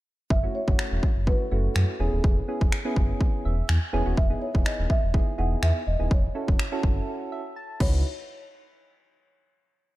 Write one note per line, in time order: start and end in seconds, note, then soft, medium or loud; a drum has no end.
0.30 0.47 F#1 loud
0.30 0.55 E5 loud
0.30 kick loud
0.43 0.60 A3 medium
0.43 0.60 C#4 medium
0.43 0.60 E4 medium
0.43 0.60 F#4 medium
0.55 1.23 C#5 medium
0.67 0.76 F#1 medium
0.67 1.10 A3 medium
0.67 1.10 C#4 medium
0.67 1.10 E4 medium
0.67 1.11 F#4 medium
0.67 kick medium
0.79 finger snap loud
0.92 1.00 E1 medium
1.03 kick medium
1.16 1.33 F#1 medium
1.27 1.45 A3 medium
1.27 1.45 C#4 medium
1.27 1.45 E4 medium
1.27 1.45 F#4 medium
1.27 1.38 B4 medium
1.27 kick medium
1.51 1.68 F#1 loud
1.51 1.95 A3 medium
1.51 1.95 C#4 medium
1.51 1.95 E4 medium
1.51 1.95 F#4 medium
1.51 2.01 A4 medium
1.76 1.85 F#2 loud
1.76 finger snap loud
2.00 2.09 E1 loud
2.00 2.39 B3 medium
2.00 2.39 C#4 medium
2.00 2.39 E4 medium
2.00 3.89 G#4 medium
2.00 2.39 G#4 medium
2.13 2.21 D#1 medium
2.24 2.41 E1 loud
2.24 kick loud
2.48 2.74 B3 medium
2.48 2.74 C#4 medium
2.48 2.74 E4 medium
2.48 2.74 G#4 medium
2.61 2.69 E1 medium
2.61 kick medium
2.72 finger snap loud
2.85 3.54 B3 medium
2.85 3.54 C#4 medium
2.85 3.54 E4 medium
2.85 3.54 G#4 loud
2.96 3.13 F#1 medium
2.96 kick loud
3.21 kick medium
3.45 3.62 E1 medium
3.45 3.68 E5 medium
3.69 3.78 E2 loud
3.69 4.14 G#5 medium
3.69 finger snap loud
3.93 4.02 E1 medium
3.93 4.02 B3 loud
3.93 4.02 C#4 medium
3.93 4.02 E4 medium
3.93 4.03 G#4 loud
4.06 4.14 D#1 medium
4.06 4.17 B3 medium
4.06 4.17 C#4 medium
4.06 4.17 E4 medium
4.06 4.18 F#4 medium
4.17 4.34 E1 loud
4.17 4.40 E5 medium
4.17 kick loud
4.30 4.47 B3 medium
4.30 4.47 D#4 medium
4.30 4.47 E4 medium
4.30 4.47 G#4 medium
4.42 4.52 C#5 medium
4.54 4.63 E1 loud
4.54 4.97 B3 medium
4.54 4.97 D#4 medium
4.54 4.97 E4 medium
4.54 4.97 G#4 medium
4.54 kick medium
4.66 4.91 D#5 medium
4.66 finger snap loud
4.79 4.87 D#1 medium
4.90 5.40 E5 medium
4.90 kick medium
5.03 5.20 E1 medium
5.14 5.32 B3 medium
5.14 5.32 D#4 medium
5.14 5.32 E4 medium
5.14 5.32 G#4 medium
5.14 kick medium
5.38 5.55 E1 loud
5.38 5.82 B3 medium
5.38 5.82 D#4 medium
5.38 5.82 E4 medium
5.38 5.82 G#4 medium
5.38 5.63 F#5 loud
5.63 5.72 E2 loud
5.63 5.88 E5 medium
5.63 finger snap loud
5.87 5.96 E1 medium
5.87 6.12 D#5 medium
5.99 6.08 D#1 medium
5.99 6.11 B3 medium
5.99 6.11 D#4 medium
5.99 6.11 E4 medium
5.99 6.11 G#4 medium
6.11 6.28 E1 loud
6.11 7.52 C#5 medium
6.11 kick loud
6.35 6.61 C#4 medium
6.35 6.61 E4 medium
6.35 6.61 F#4 medium
6.35 6.61 A4 medium
6.48 6.56 E1 loud
6.48 kick medium
6.59 finger snap loud
6.72 7.41 C#4 medium
6.72 7.41 E4 medium
6.72 7.41 F#4 medium
6.72 7.41 A4 loud
6.83 7.00 F#1 medium
6.83 kick medium
7.32 7.55 E5 medium
7.56 7.79 A5 medium
7.80 8.03 C#2 loud
7.80 8.03 D#4 medium
7.80 8.03 E4 medium
7.80 8.03 F#4 medium
7.80 8.03 B4 medium
7.80 8.03 C#5 medium
7.80 kick loud
7.80 crash medium